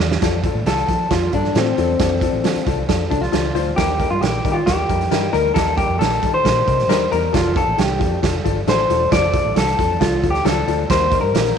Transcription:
0.00 E2 F4 D5, snare
0.11 snare
0.22 F2 F3 D4 A4, kick, snare, closed hi-hat
0.44 F3 D4 A4, kick, closed hi-hat
0.54 A2
0.65 C2 F3 D4 A4, snare, closed hi-hat
0.77 closed hi-hat
0.89 F3 D4 A4, kick, closed hi-hat
1.11 F2 F3 D4 F4 A4, kick, snare, closed hi-hat
1.33 G2 F3 D4 A4, kick, closed hi-hat
1.44 snare
1.55 A2 F3 C4 D4 A4, snare, closed hi-hat
1.77 E2 F3 D4 A4, closed hi-hat
1.99 F2 F3 D4 A4, kick, snare, closed hi-hat
2.21 F3 D4 A4, kick, closed hi-hat
2.33 A1
2.44 F3 D4 A4, snare, closed hi-hat
2.55 muted fingered electric bass stroke, closed hi-hat
2.66 C2 F3 D4 A4, kick, closed hi-hat
2.89 F2 F3 D4 A4, kick, snare, closed hi-hat
3.10 C2 F3 D4 A4, kick, closed hi-hat
3.21 F4, snare, closed hi-hat
3.32 C#2 F3 D4 A4, snare, closed hi-hat
3.54 D2 F3 D4 C5, closed hi-hat
3.76 D#2 G3 D#4 G4 A#4, kick, snare, closed hi-hat
4.00 G3 D#4 A#4, kick, closed hi-hat
4.10 G2 F4
4.21 A#1 G3 D#4 G4 A#4, snare, closed hi-hat
4.44 D#3 G3 D#4 A#4, kick, closed hi-hat
4.52 F4 G4
4.66 D#2 G3 D#4 G4 A#4, kick, snare, closed hi-hat
4.89 F2 G3 D#4 A#4, kick, closed hi-hat
5.01 snare, closed hi-hat
5.11 G2 G3 D#4 A#4, snare, closed hi-hat
5.33 D2 G3 D#4 A#4, closed hi-hat
5.54 D#2 G3 D#4 A4 A#4, kick, snare, closed hi-hat
5.77 G3 D#4 G4 A#4, kick, closed hi-hat
5.89 F2
5.99 A#1 G3 D#4 A4 A#4, snare, closed hi-hat
6.12 closed hi-hat
6.23 D#3 G3 D#4 A4, kick, closed hi-hat
6.34 C5
6.44 A#2 G3 D#4 A#4, kick, snare, closed hi-hat
6.67 C3 G3 D#4 A#4, kick, closed hi-hat
6.79 snare, closed hi-hat
6.89 D#2 G3 D#4 A#4, snare, closed hi-hat
7.11 E2 G3 D#4 A#4, closed hi-hat
7.33 F1 F3 D4 F4 A4, kick, snare, closed hi-hat
7.55 F3 D4 A4, kick, closed hi-hat
7.67 A1
7.78 C2 F3 D4 G4 A4, snare, closed hi-hat
7.99 F2 F3 D4 A4, kick, closed hi-hat
8.22 F1 F3 D4 A4, kick, snare, closed hi-hat
8.44 G1 F3 D4 A4, kick, closed hi-hat
8.67 A1 F3 D4 A4 C5, snare, closed hi-hat
8.89 E1 F3 D4 A4, closed hi-hat
9.11 F1 F3 D4 A4 D5, kick, snare, closed hi-hat
9.33 F3 D4 A4, kick, closed hi-hat
9.45 A1
9.55 C2 F3 D4 A4, snare, closed hi-hat
9.68 closed hi-hat
9.78 F2 F3 D4 A4, kick, closed hi-hat
10.01 C2 F3 D4 F4 A4, kick, snare, closed hi-hat
10.23 D2 F3 D4 A4, kick, closed hi-hat
10.30 G4
10.35 snare, closed hi-hat
10.45 C#2 F3 D4 A4, snare, closed hi-hat
10.68 D2 F3 D4 A4, closed hi-hat
10.90 D#2 G3 D#4 A#4 C5, kick, snare, closed hi-hat
11.12 G3 D#4 A#4, kick, closed hi-hat
11.21 G2 A#4
11.34 A#1 G3 D#4 A#4, snare, closed hi-hat
11.46 closed hi-hat

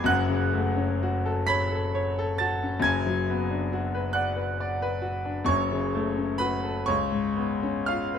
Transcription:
Already playing: F2 G#3 G#4 D5 D6 G#6
0.04 F#1 F#2 F#5 F#6
0.29 C#3
0.53 A3
0.76 C#4
1.03 F#4
1.26 A4
1.47 C#5 B5 B6
1.72 A4
1.95 C#5
2.19 A4
2.38 F#4 A5 A6
2.63 C#4
2.80 F#1 F#2 G#6
2.84 G#5
3.06 F#3
3.29 B3
3.50 D4
3.73 F#4
3.95 B4
4.13 D5 F#5 F#6
4.36 B4
4.60 D5
4.82 B4
5.02 F#4
5.25 D4
5.45 F#1 F#2 C#5 C#6
5.71 C#3
5.95 A3
6.17 C#4
6.38 F#4 B4 B5
6.64 A4
6.86 C#2 C#5 C#6
7.12 G#2
7.37 B3
7.63 C#4
7.86 F4 F5 F6
8.14 B4

